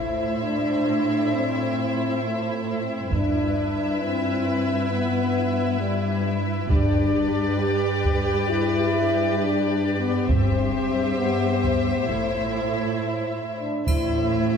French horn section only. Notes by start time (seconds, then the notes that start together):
Already playing: E4
0.43 D4
1.34 C4
2.23 A3
2.83 C4
3.14 D4
4.02 C4
4.91 B3
5.80 G3
6.69 D4
7.59 G4
8.49 E4
9.37 D4
9.99 B3
10.28 C4
11.18 B3
12.09 A3
13.58 D4
13.89 E4